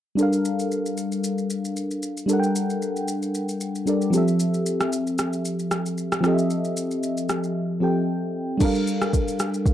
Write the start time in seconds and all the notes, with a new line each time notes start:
0.15 G3 D4 A4, shaker
0.21 A#4 F5
0.33 shaker
0.45 shaker
0.59 shaker
0.71 shaker
0.86 shaker
0.97 shaker
1.12 shaker
1.24 shaker
1.38 shaker
1.50 shaker
1.65 shaker
1.76 shaker
1.91 shaker
2.03 shaker
2.17 shaker
2.26 G3 D4 A4, shaker
2.31 A#4 F#5
2.39 G5, shaker
2.56 shaker
2.70 shaker
2.82 shaker
2.96 shaker
3.08 shaker
3.22 shaker
3.35 shaker
3.49 shaker
3.61 shaker
3.75 shaker
3.86 G3 D4 A4 A#4 D5, shaker
4.02 shaker
4.10 F3 C4 G4, shaker
4.16 A4 E5
4.28 shaker
4.40 shaker
4.54 shaker
4.66 shaker
4.81 cross-stick, shaker
4.93 shaker
5.07 shaker
5.18 cross-stick, shaker
5.33 shaker
5.45 shaker
5.59 shaker
5.71 cross-stick, shaker
5.86 shaker
5.98 shaker
6.12 cross-stick, shaker
6.21 F3 C4 G4, cross-stick, shaker
6.26 A4 D#5
6.34 E5
6.38 shaker
6.50 shaker
6.65 shaker
6.77 shaker
6.91 shaker
7.03 shaker
7.17 shaker
7.29 cross-stick, shaker
7.44 shaker
7.80 F3 C4 G4 A4 G5
8.57 G3 D4 A4, kick, crash, shaker
8.63 A#4 F5
8.75 shaker
8.87 shaker
9.02 cross-stick, shaker
9.13 kick, shaker
9.28 shaker
9.39 cross-stick, shaker
9.54 shaker
9.66 kick, shaker